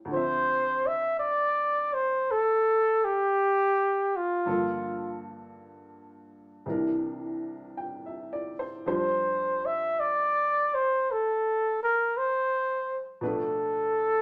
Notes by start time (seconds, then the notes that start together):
Already playing: G3 C#4 F4
0.05 D2 D3
0.11 F3 C4 C5
0.16 E5
0.86 E5
1.19 D5
1.94 C5
2.31 A4
3.05 G4
4.16 F4
4.46 G2 D3 F3 A#3 A4
6.66 C2 C3 E3 D4 A#4
7.77 G5
8.06 E5
8.33 D5
8.59 C5
8.86 F2 F3 G3 D4 C5
9.66 E5
10.00 D5
10.74 C5
11.11 A4
11.83 A#4
12.17 C5
13.21 B2 F3 A3 D4 B4
13.28 A4